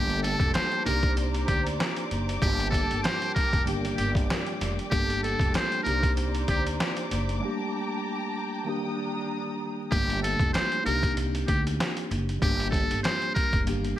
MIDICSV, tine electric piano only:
0, 0, Header, 1, 2, 480
1, 0, Start_track
1, 0, Key_signature, -2, "minor"
1, 0, Tempo, 625000
1, 1857, Time_signature, 4, 2, 24, 8
1, 10745, End_track
2, 0, Start_track
2, 0, Title_t, "Tine electric piano"
2, 0, Program_c, 0, 4
2, 0, Note_on_c, 0, 55, 63
2, 0, Note_on_c, 0, 57, 64
2, 0, Note_on_c, 0, 58, 66
2, 0, Note_on_c, 0, 62, 65
2, 0, Note_on_c, 0, 67, 75
2, 91, Control_c, 0, 64, 127
2, 636, Note_on_c, 0, 63, 62
2, 638, Note_off_c, 0, 58, 0
2, 647, Note_on_c, 0, 58, 63
2, 652, Note_off_c, 0, 55, 0
2, 654, Note_off_c, 0, 57, 0
2, 657, Note_on_c, 0, 60, 60
2, 658, Note_off_c, 0, 62, 0
2, 662, Note_off_c, 0, 67, 0
2, 666, Control_c, 0, 64, 0
2, 667, Note_on_c, 0, 62, 64
2, 678, Note_on_c, 0, 67, 78
2, 808, Control_c, 0, 64, 127
2, 1822, Note_off_c, 0, 63, 0
2, 1828, Note_off_c, 0, 58, 0
2, 1833, Note_off_c, 0, 60, 0
2, 1838, Note_off_c, 0, 62, 0
2, 1840, Note_on_c, 0, 55, 70
2, 1843, Note_off_c, 0, 67, 0
2, 1861, Note_on_c, 0, 58, 65
2, 1868, Control_c, 0, 64, 0
2, 1872, Note_on_c, 0, 62, 64
2, 1882, Note_on_c, 0, 67, 74
2, 2004, Control_c, 0, 64, 127
2, 2789, Note_off_c, 0, 55, 0
2, 2792, Note_on_c, 0, 51, 66
2, 2800, Note_off_c, 0, 58, 0
2, 2802, Note_on_c, 0, 55, 60
2, 2805, Note_off_c, 0, 62, 0
2, 2810, Note_off_c, 0, 67, 0
2, 2813, Note_on_c, 0, 58, 64
2, 2823, Note_on_c, 0, 62, 57
2, 2826, Control_c, 0, 64, 0
2, 2833, Note_on_c, 0, 67, 75
2, 2952, Control_c, 0, 64, 127
2, 3745, Note_off_c, 0, 51, 0
2, 3750, Note_off_c, 0, 55, 0
2, 3755, Note_off_c, 0, 58, 0
2, 3761, Note_off_c, 0, 62, 0
2, 3766, Note_off_c, 0, 67, 0
2, 3766, Note_on_c, 0, 55, 66
2, 3771, Note_on_c, 0, 57, 65
2, 3776, Note_on_c, 0, 58, 65
2, 3782, Note_on_c, 0, 62, 66
2, 3786, Control_c, 0, 64, 0
2, 3786, Note_on_c, 0, 67, 76
2, 3932, Control_c, 0, 64, 127
2, 4475, Note_on_c, 0, 63, 62
2, 4477, Note_off_c, 0, 58, 0
2, 4486, Note_on_c, 0, 58, 60
2, 4491, Note_off_c, 0, 55, 0
2, 4494, Note_off_c, 0, 57, 0
2, 4496, Note_on_c, 0, 60, 64
2, 4497, Note_off_c, 0, 62, 0
2, 4502, Note_off_c, 0, 67, 0
2, 4506, Control_c, 0, 64, 0
2, 4506, Note_on_c, 0, 62, 65
2, 4517, Note_on_c, 0, 67, 77
2, 4637, Control_c, 0, 64, 127
2, 5662, Note_off_c, 0, 63, 0
2, 5667, Note_off_c, 0, 58, 0
2, 5672, Note_off_c, 0, 60, 0
2, 5678, Note_off_c, 0, 62, 0
2, 5679, Note_on_c, 0, 55, 74
2, 5683, Note_off_c, 0, 67, 0
2, 5690, Note_on_c, 0, 57, 66
2, 5700, Note_on_c, 0, 58, 62
2, 5706, Control_c, 0, 64, 0
2, 5711, Note_on_c, 0, 62, 64
2, 5721, Note_on_c, 0, 67, 74
2, 5846, Control_c, 0, 64, 127
2, 6628, Note_off_c, 0, 55, 0
2, 6631, Note_on_c, 0, 51, 67
2, 6634, Note_off_c, 0, 57, 0
2, 6639, Note_off_c, 0, 58, 0
2, 6641, Note_on_c, 0, 55, 61
2, 6645, Note_off_c, 0, 62, 0
2, 6650, Note_off_c, 0, 67, 0
2, 6652, Note_on_c, 0, 58, 64
2, 6662, Note_on_c, 0, 62, 58
2, 6667, Control_c, 0, 64, 0
2, 6673, Note_on_c, 0, 67, 72
2, 6801, Control_c, 0, 64, 127
2, 7585, Note_off_c, 0, 51, 0
2, 7590, Note_off_c, 0, 55, 0
2, 7595, Note_off_c, 0, 58, 0
2, 7600, Note_off_c, 0, 62, 0
2, 7606, Note_off_c, 0, 67, 0
2, 7606, Note_on_c, 0, 55, 66
2, 7612, Note_on_c, 0, 57, 64
2, 7617, Note_on_c, 0, 58, 66
2, 7622, Note_on_c, 0, 62, 65
2, 7628, Control_c, 0, 64, 0
2, 7628, Note_on_c, 0, 67, 76
2, 7772, Control_c, 0, 64, 127
2, 8316, Note_on_c, 0, 63, 61
2, 8317, Note_off_c, 0, 58, 0
2, 8326, Note_on_c, 0, 58, 63
2, 8332, Note_off_c, 0, 55, 0
2, 8334, Note_off_c, 0, 57, 0
2, 8337, Note_on_c, 0, 60, 64
2, 8339, Note_off_c, 0, 62, 0
2, 8342, Note_off_c, 0, 67, 0
2, 8346, Control_c, 0, 64, 0
2, 8347, Note_on_c, 0, 62, 64
2, 8357, Note_on_c, 0, 67, 78
2, 8502, Control_c, 0, 64, 127
2, 9502, Note_off_c, 0, 63, 0
2, 9507, Note_off_c, 0, 58, 0
2, 9513, Note_off_c, 0, 60, 0
2, 9518, Note_off_c, 0, 62, 0
2, 9520, Note_on_c, 0, 55, 69
2, 9523, Note_off_c, 0, 67, 0
2, 9541, Note_on_c, 0, 58, 67
2, 9545, Control_c, 0, 64, 0
2, 9551, Note_on_c, 0, 62, 64
2, 9562, Note_on_c, 0, 67, 74
2, 9687, Control_c, 0, 64, 127
2, 10469, Note_off_c, 0, 55, 0
2, 10472, Note_on_c, 0, 51, 68
2, 10480, Note_off_c, 0, 58, 0
2, 10483, Note_on_c, 0, 55, 60
2, 10485, Note_off_c, 0, 62, 0
2, 10490, Note_off_c, 0, 67, 0
2, 10493, Note_on_c, 0, 58, 65
2, 10504, Note_on_c, 0, 62, 61
2, 10509, Control_c, 0, 64, 0
2, 10514, Note_on_c, 0, 67, 75
2, 10661, Control_c, 0, 64, 127
2, 10745, Note_off_c, 0, 51, 0
2, 10745, Note_off_c, 0, 55, 0
2, 10745, Note_off_c, 0, 58, 0
2, 10745, Note_off_c, 0, 62, 0
2, 10745, Note_off_c, 0, 67, 0
2, 10745, End_track
0, 0, End_of_file